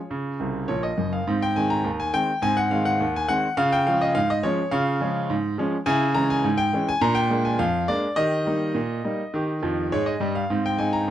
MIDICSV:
0, 0, Header, 1, 2, 480
1, 0, Start_track
1, 0, Key_signature, -4, "major"
1, 0, Tempo, 576923
1, 94, Time_signature, 2, 2, 24, 8
1, 9239, End_track
2, 0, Start_track
2, 0, Title_t, "Grand piano"
2, 0, Program_c, 0, 0
2, 0, Note_on_c, 0, 65, 59
2, 0, Note_on_c, 0, 68, 58
2, 0, Note_on_c, 0, 73, 72
2, 89, Note_on_c, 0, 49, 68
2, 248, Control_c, 0, 64, 127
2, 297, Note_off_c, 0, 49, 0
2, 332, Note_on_c, 0, 48, 56
2, 336, Note_on_c, 0, 36, 57
2, 515, Note_off_c, 0, 48, 0
2, 518, Note_off_c, 0, 36, 0
2, 548, Note_off_c, 0, 65, 0
2, 548, Note_off_c, 0, 68, 0
2, 553, Note_off_c, 0, 73, 0
2, 566, Note_on_c, 0, 73, 84
2, 571, Note_on_c, 0, 34, 62
2, 572, Note_on_c, 0, 46, 58
2, 585, Control_c, 0, 64, 0
2, 691, Note_on_c, 0, 75, 81
2, 693, Note_off_c, 0, 73, 0
2, 755, Note_off_c, 0, 34, 0
2, 756, Note_off_c, 0, 46, 0
2, 813, Note_on_c, 0, 42, 57
2, 818, Note_on_c, 0, 30, 59
2, 937, Note_off_c, 0, 75, 0
2, 938, Note_on_c, 0, 77, 78
2, 997, Note_off_c, 0, 42, 0
2, 1000, Note_off_c, 0, 30, 0
2, 1060, Note_on_c, 0, 44, 98
2, 1073, Note_on_c, 0, 60, 57
2, 1180, Note_off_c, 0, 77, 0
2, 1185, Note_on_c, 0, 79, 98
2, 1202, Note_off_c, 0, 60, 0
2, 1231, Control_c, 0, 64, 127
2, 1265, Note_off_c, 0, 44, 0
2, 1299, Note_on_c, 0, 80, 96
2, 1304, Note_off_c, 0, 79, 0
2, 1305, Note_on_c, 0, 51, 49
2, 1310, Note_on_c, 0, 56, 51
2, 1312, Note_on_c, 0, 60, 52
2, 1416, Note_on_c, 0, 82, 103
2, 1421, Note_off_c, 0, 80, 0
2, 1436, Note_off_c, 0, 51, 0
2, 1440, Note_off_c, 0, 56, 0
2, 1442, Note_off_c, 0, 60, 0
2, 1534, Note_on_c, 0, 39, 84
2, 1554, Control_c, 0, 64, 0
2, 1660, Note_off_c, 0, 82, 0
2, 1661, Note_on_c, 0, 80, 102
2, 1742, Note_off_c, 0, 39, 0
2, 1778, Note_on_c, 0, 51, 49
2, 1778, Note_on_c, 0, 79, 114
2, 1780, Note_on_c, 0, 56, 47
2, 1782, Note_off_c, 0, 80, 0
2, 1782, Note_on_c, 0, 60, 58
2, 1911, Note_off_c, 0, 51, 0
2, 1912, Note_off_c, 0, 56, 0
2, 1914, Note_off_c, 0, 60, 0
2, 2012, Note_on_c, 0, 44, 97
2, 2018, Note_on_c, 0, 80, 127
2, 2020, Note_off_c, 0, 79, 0
2, 2029, Note_on_c, 0, 60, 67
2, 2136, Note_on_c, 0, 78, 97
2, 2140, Note_off_c, 0, 80, 0
2, 2159, Note_off_c, 0, 60, 0
2, 2179, Control_c, 0, 64, 127
2, 2220, Note_off_c, 0, 44, 0
2, 2255, Note_on_c, 0, 77, 90
2, 2259, Note_off_c, 0, 78, 0
2, 2260, Note_on_c, 0, 56, 56
2, 2263, Note_on_c, 0, 51, 46
2, 2264, Note_on_c, 0, 60, 51
2, 2374, Note_on_c, 0, 78, 92
2, 2378, Note_off_c, 0, 77, 0
2, 2392, Note_off_c, 0, 56, 0
2, 2394, Note_off_c, 0, 51, 0
2, 2395, Note_off_c, 0, 60, 0
2, 2501, Note_on_c, 0, 39, 87
2, 2512, Control_c, 0, 64, 0
2, 2617, Note_off_c, 0, 78, 0
2, 2632, Note_on_c, 0, 80, 106
2, 2705, Note_off_c, 0, 39, 0
2, 2733, Note_on_c, 0, 78, 111
2, 2736, Note_on_c, 0, 56, 57
2, 2739, Note_on_c, 0, 51, 55
2, 2743, Note_on_c, 0, 60, 63
2, 2746, Note_off_c, 0, 80, 0
2, 2869, Note_off_c, 0, 56, 0
2, 2872, Note_off_c, 0, 51, 0
2, 2874, Note_off_c, 0, 60, 0
2, 2972, Note_on_c, 0, 49, 100
2, 2972, Note_on_c, 0, 77, 126
2, 2977, Note_off_c, 0, 78, 0
2, 2987, Note_on_c, 0, 65, 65
2, 3096, Note_off_c, 0, 77, 0
2, 3099, Note_on_c, 0, 79, 107
2, 3118, Note_off_c, 0, 65, 0
2, 3124, Control_c, 0, 64, 127
2, 3180, Note_off_c, 0, 49, 0
2, 3216, Note_on_c, 0, 77, 100
2, 3220, Note_off_c, 0, 79, 0
2, 3223, Note_on_c, 0, 53, 54
2, 3228, Note_on_c, 0, 61, 54
2, 3229, Note_on_c, 0, 56, 49
2, 3338, Note_off_c, 0, 77, 0
2, 3340, Note_on_c, 0, 75, 94
2, 3355, Note_off_c, 0, 53, 0
2, 3358, Note_off_c, 0, 56, 0
2, 3358, Note_off_c, 0, 61, 0
2, 3451, Note_on_c, 0, 77, 123
2, 3453, Note_on_c, 0, 44, 92
2, 3460, Note_off_c, 0, 75, 0
2, 3471, Control_c, 0, 64, 0
2, 3576, Note_off_c, 0, 77, 0
2, 3579, Note_on_c, 0, 75, 101
2, 3660, Note_off_c, 0, 44, 0
2, 3688, Note_on_c, 0, 73, 101
2, 3690, Note_on_c, 0, 56, 63
2, 3691, Note_on_c, 0, 53, 68
2, 3696, Note_on_c, 0, 61, 67
2, 3699, Note_off_c, 0, 75, 0
2, 3824, Note_off_c, 0, 56, 0
2, 3825, Note_off_c, 0, 53, 0
2, 3828, Note_off_c, 0, 61, 0
2, 3922, Note_on_c, 0, 77, 112
2, 3927, Note_on_c, 0, 49, 100
2, 3933, Note_off_c, 0, 73, 0
2, 3944, Note_on_c, 0, 65, 71
2, 4074, Note_off_c, 0, 65, 0
2, 4083, Control_c, 0, 64, 127
2, 4135, Note_off_c, 0, 49, 0
2, 4165, Note_on_c, 0, 53, 56
2, 4170, Note_on_c, 0, 61, 65
2, 4171, Note_on_c, 0, 56, 65
2, 4299, Note_off_c, 0, 53, 0
2, 4303, Note_off_c, 0, 61, 0
2, 4304, Note_off_c, 0, 56, 0
2, 4407, Note_off_c, 0, 77, 0
2, 4407, Note_on_c, 0, 44, 93
2, 4427, Control_c, 0, 64, 0
2, 4613, Note_off_c, 0, 44, 0
2, 4643, Note_on_c, 0, 53, 60
2, 4648, Note_on_c, 0, 56, 64
2, 4653, Note_on_c, 0, 61, 75
2, 4777, Note_off_c, 0, 53, 0
2, 4781, Note_off_c, 0, 56, 0
2, 4784, Note_off_c, 0, 61, 0
2, 4875, Note_on_c, 0, 80, 127
2, 4877, Note_on_c, 0, 49, 115
2, 4894, Note_on_c, 0, 64, 80
2, 5025, Note_off_c, 0, 64, 0
2, 5077, Control_c, 0, 64, 127
2, 5087, Note_off_c, 0, 49, 0
2, 5113, Note_on_c, 0, 82, 119
2, 5116, Note_on_c, 0, 52, 58
2, 5118, Note_on_c, 0, 56, 59
2, 5121, Note_on_c, 0, 61, 66
2, 5123, Note_off_c, 0, 80, 0
2, 5242, Note_off_c, 0, 82, 0
2, 5243, Note_on_c, 0, 80, 113
2, 5252, Note_off_c, 0, 52, 0
2, 5253, Note_off_c, 0, 56, 0
2, 5255, Note_off_c, 0, 61, 0
2, 5359, Note_on_c, 0, 44, 103
2, 5378, Control_c, 0, 64, 0
2, 5471, Note_on_c, 0, 79, 115
2, 5486, Note_off_c, 0, 80, 0
2, 5567, Note_off_c, 0, 44, 0
2, 5600, Note_on_c, 0, 52, 59
2, 5605, Note_on_c, 0, 56, 62
2, 5608, Note_on_c, 0, 61, 68
2, 5719, Note_off_c, 0, 79, 0
2, 5729, Note_on_c, 0, 80, 122
2, 5734, Note_off_c, 0, 52, 0
2, 5738, Note_off_c, 0, 56, 0
2, 5740, Note_off_c, 0, 61, 0
2, 5835, Note_on_c, 0, 46, 114
2, 5836, Note_on_c, 0, 82, 127
2, 5848, Note_off_c, 0, 80, 0
2, 5852, Note_on_c, 0, 62, 73
2, 5946, Note_on_c, 0, 79, 114
2, 5961, Note_off_c, 0, 82, 0
2, 5982, Note_off_c, 0, 62, 0
2, 6013, Control_c, 0, 64, 127
2, 6043, Note_off_c, 0, 46, 0
2, 6075, Note_on_c, 0, 56, 49
2, 6079, Note_on_c, 0, 58, 58
2, 6084, Note_on_c, 0, 62, 67
2, 6196, Note_off_c, 0, 79, 0
2, 6197, Note_on_c, 0, 80, 90
2, 6210, Note_off_c, 0, 56, 0
2, 6213, Note_off_c, 0, 58, 0
2, 6217, Note_off_c, 0, 62, 0
2, 6316, Note_on_c, 0, 41, 92
2, 6316, Note_on_c, 0, 77, 117
2, 6322, Note_off_c, 0, 80, 0
2, 6337, Control_c, 0, 64, 0
2, 6524, Note_off_c, 0, 41, 0
2, 6557, Note_on_c, 0, 56, 57
2, 6557, Note_on_c, 0, 74, 105
2, 6561, Note_off_c, 0, 77, 0
2, 6566, Note_on_c, 0, 58, 61
2, 6568, Note_on_c, 0, 62, 64
2, 6692, Note_off_c, 0, 56, 0
2, 6698, Note_off_c, 0, 58, 0
2, 6700, Note_off_c, 0, 62, 0
2, 6791, Note_on_c, 0, 75, 116
2, 6795, Note_on_c, 0, 51, 89
2, 6803, Note_off_c, 0, 74, 0
2, 6815, Note_on_c, 0, 67, 58
2, 6945, Note_off_c, 0, 67, 0
2, 6959, Control_c, 0, 64, 127
2, 7005, Note_off_c, 0, 51, 0
2, 7039, Note_on_c, 0, 55, 44
2, 7045, Note_on_c, 0, 58, 51
2, 7048, Note_on_c, 0, 63, 62
2, 7173, Note_off_c, 0, 55, 0
2, 7178, Note_off_c, 0, 58, 0
2, 7180, Note_off_c, 0, 63, 0
2, 7276, Note_on_c, 0, 46, 81
2, 7297, Control_c, 0, 64, 0
2, 7485, Note_off_c, 0, 46, 0
2, 7525, Note_on_c, 0, 55, 53
2, 7527, Note_on_c, 0, 58, 49
2, 7531, Note_on_c, 0, 63, 54
2, 7658, Note_off_c, 0, 55, 0
2, 7659, Note_off_c, 0, 58, 0
2, 7663, Note_off_c, 0, 63, 0
2, 7769, Note_on_c, 0, 51, 85
2, 7782, Note_on_c, 0, 67, 60
2, 7911, Note_off_c, 0, 67, 0
2, 7958, Control_c, 0, 64, 127
2, 7974, Note_off_c, 0, 51, 0
2, 8009, Note_on_c, 0, 41, 76
2, 8009, Note_on_c, 0, 53, 68
2, 8190, Note_off_c, 0, 41, 0
2, 8190, Note_off_c, 0, 53, 0
2, 8243, Note_off_c, 0, 75, 0
2, 8256, Note_on_c, 0, 44, 75
2, 8256, Note_on_c, 0, 56, 84
2, 8256, Note_on_c, 0, 73, 100
2, 8261, Control_c, 0, 64, 0
2, 8371, Note_on_c, 0, 75, 87
2, 8374, Note_off_c, 0, 73, 0
2, 8435, Note_off_c, 0, 44, 0
2, 8435, Note_off_c, 0, 56, 0
2, 8488, Note_on_c, 0, 43, 77
2, 8492, Note_on_c, 0, 55, 78
2, 8612, Note_off_c, 0, 75, 0
2, 8614, Note_on_c, 0, 77, 90
2, 8671, Note_off_c, 0, 43, 0
2, 8673, Note_off_c, 0, 55, 0
2, 8737, Note_on_c, 0, 44, 91
2, 8751, Note_on_c, 0, 60, 58
2, 8854, Note_off_c, 0, 77, 0
2, 8866, Note_on_c, 0, 79, 97
2, 8879, Note_off_c, 0, 60, 0
2, 8883, Control_c, 0, 64, 127
2, 8940, Note_off_c, 0, 44, 0
2, 8973, Note_on_c, 0, 80, 92
2, 8976, Note_on_c, 0, 56, 46
2, 8977, Note_on_c, 0, 60, 41
2, 8981, Note_off_c, 0, 79, 0
2, 8982, Note_on_c, 0, 63, 58
2, 9093, Note_on_c, 0, 82, 96
2, 9094, Note_off_c, 0, 80, 0
2, 9108, Note_off_c, 0, 56, 0
2, 9109, Note_off_c, 0, 60, 0
2, 9113, Note_off_c, 0, 63, 0
2, 9227, Control_c, 0, 64, 0
2, 9239, Note_off_c, 0, 82, 0
2, 9239, End_track
0, 0, End_of_file